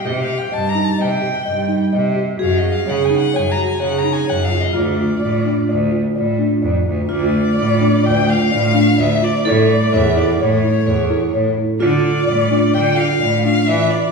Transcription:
X:1
M:5/4
L:1/8
Q:1/4=128
K:Cdor
V:1 name="Violin"
(3e f g (3a b a g4 z2 | (3f e f (3^f ^g f (3g b g (3f b g (3f =f e | d4 z6 | [K:Dm] d4 g f3 e d |
^c d e d c4 z2 | d4 g f2 f e d |]
V:2 name="Celesta"
G2 e E e G e E e G | ^F2 ^c E c F c E c =F | F2 d D d F d D d F | [K:Dm] F2 d D d F d D d F |
E2 ^c E c E c E c E | F2 d D d F d D d F |]
V:3 name="Vibraphone"
G8- G2 | ^G8- G2 | F8- F z | [K:Dm] F8- F2 |
A8- A2 | F8- F2 |]
V:4 name="Cello" clef=bass
C,2 G,,2 C,2 G,,2 C,2 | ^F,,2 ^C,2 F,,2 C,2 F,,2 | D,,2 A,,2 D,,2 A,,2 F,, D,, | [K:Dm] D,,2 A,,2 D,,2 A,,2 D,, z |
A,,2 E,,2 A,,2 E,,2 A,, z | D,2 A,,2 D,2 A,,2 E, z |]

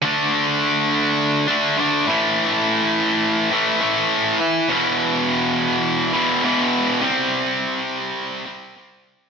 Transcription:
X:1
M:4/4
L:1/8
Q:1/4=103
K:Dmix
V:1 name="Distorted electric guitar" clef=bass
[D,A,D]4- [D,A,D] [D,A,D] [D,A,D] [A,,E,A,]- | [A,,E,A,]4 [A,,E,A,] [A,,E,A,]2 z | [E,,B,,E,]4- [E,,B,,E,] [E,,B,,E,] [E,,B,,E,]2 | [C,G,C]4- [C,G,C] [C,G,C] [C,G,C]2 |]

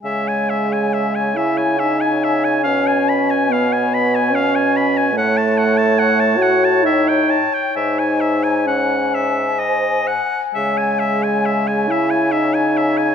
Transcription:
X:1
M:3/4
L:1/16
Q:1/4=69
K:C#m
V:1 name="Flute"
g12- | g12 | a6 z2 =g4 | g12- |
g12 |]
V:2 name="Oboe"
e g e g e g e g e g e g | ^e g b g e g b g e g b g | f a f a f a f a e =g a g | e g e g f2 e2 d2 f2 |
e g e g e g e g e g e g |]
V:3 name="Clarinet"
c12- | c12 | c12- | c6 z2 ^B2 z2 |
c12 |]
V:4 name="French horn"
G,6 E2 D4 | C4 B,4 C4 | A,6 F2 D2 z2 | D4 C4 z4 |
G,6 E2 D4 |]
V:5 name="Bassoon" clef=bass
C,12 | B,,12 | A,,8- A,,2 z2 | G,,8- G,,2 z2 |
C,12 |]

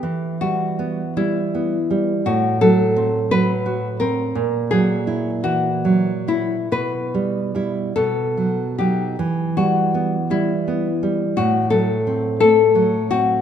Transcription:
X:1
M:6/8
L:1/8
Q:3/8=55
K:Em
V:1 name="Nylon-string guitar"
G F2 E3 | F A2 B2 ^A- | ^A ^G2 F2 E | B3 A2 G- |
G F2 E3 | F A2 A2 F |]
V:2 name="Nylon-string guitar" clef=bass
E, G, B, G, B, G, | A,, F, C F, F C | ^A,, F, E E, F, E | B,, G, [G,E] B,, F, [F,^D] |
E, G, B, G, B, G, | A,, F, C A, F, C |]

